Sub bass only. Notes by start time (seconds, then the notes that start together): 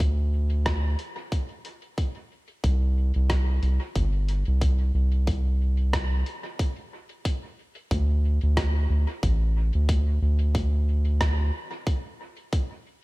Already playing: D2
2.64 C2
3.16 C2
3.62 C2
3.96 G1
4.47 C2
4.94 C2
7.91 D2
8.43 D2
8.90 D2
9.23 A1
9.75 D2
10.22 D2